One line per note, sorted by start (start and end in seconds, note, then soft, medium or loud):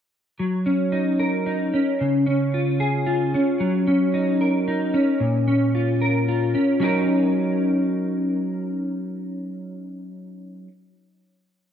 0.39 1.73 F#3 soft
0.66 1.73 C#4 soft
0.92 1.45 D#4 soft
1.20 2.00 A#4 soft
1.46 2.00 D#4 soft
1.74 2.26 C#4 soft
2.01 3.34 C#3 soft
2.26 3.34 C#4 soft
2.54 3.05 F4 soft
2.80 3.60 G#4 soft
3.07 3.60 F4 soft
3.34 3.87 C#4 soft
3.60 4.94 F#3 soft
3.87 4.93 C#4 soft
4.14 4.66 D#4 soft
4.41 6.01 A#4 soft
4.68 5.21 D#4 soft
4.94 5.47 C#4 soft
5.20 6.54 A#2 soft
5.48 6.53 C#4 soft
5.75 6.27 F4 soft
6.02 6.81 A#4 soft
6.28 6.82 F4 soft
6.55 6.80 C#4 soft
6.80 10.67 F#3 medium
6.80 10.69 C#4 medium
6.80 10.70 D#4 medium
6.84 10.71 A#4 medium